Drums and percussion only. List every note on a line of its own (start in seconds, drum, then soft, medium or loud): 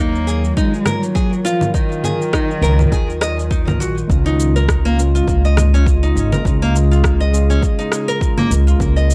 0.15 shaker soft
0.28 shaker medium
0.44 shaker soft
0.57 kick loud
0.57 shaker soft
0.74 shaker soft
0.86 cross-stick medium
0.86 low conga medium
0.86 shaker medium
1.03 shaker soft
1.16 kick loud
1.16 shaker soft
1.33 shaker soft
1.46 shaker medium
1.61 low conga medium
1.61 shaker soft
1.74 kick loud
1.74 shaker soft
1.92 shaker soft
2.04 low conga medium
2.04 shaker medium
2.22 shaker soft
2.33 kick loud
2.33 cross-stick medium
2.33 shaker soft
2.51 shaker soft
2.64 shaker medium
2.79 low conga medium
2.79 shaker soft
2.92 kick loud
2.92 shaker soft
3.10 shaker soft
3.21 cross-stick medium
3.21 shaker medium
3.39 shaker soft
3.51 kick loud
3.51 shaker soft
3.68 low conga medium
3.68 shaker soft
3.81 shaker medium
3.98 shaker soft
4.10 kick loud
4.10 shaker soft
4.27 shaker soft
4.40 shaker medium
4.57 shaker soft
4.69 kick loud
4.69 cross-stick medium
4.69 shaker soft
4.86 shaker soft
4.99 shaker medium
5.16 shaker soft
5.28 kick loud
5.28 shaker soft
5.45 shaker soft
5.57 cross-stick medium
5.57 low conga medium
5.57 shaker medium
5.75 shaker soft
5.86 kick loud
5.86 shaker soft
6.04 shaker soft
6.17 shaker medium
6.32 low conga medium
6.32 shaker soft
6.45 kick loud
6.45 shaker soft
6.63 shaker soft
6.76 shaker medium
6.93 shaker soft
7.04 kick loud
7.04 cross-stick medium
7.04 shaker soft
7.22 shaker soft
7.34 shaker medium
7.51 shaker soft
7.63 kick loud
7.63 shaker soft
7.80 shaker soft
7.92 cross-stick medium
7.92 shaker medium
8.09 shaker soft
8.21 kick loud
8.21 shaker soft
8.38 low conga medium
8.38 shaker soft
8.51 shaker medium
8.68 shaker soft
8.80 kick loud
8.80 shaker soft
8.97 shaker soft
9.10 shaker medium